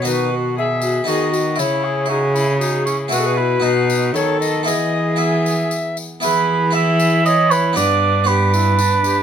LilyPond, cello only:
\new Staff \with { instrumentName = "Cello" } { \clef bass \time 3/4 \key e \major \tempo 4 = 117 b,2 dis4 | cis2. | b,4 b,4 dis4 | e2~ e8 r8 |
e2. | g,2. | }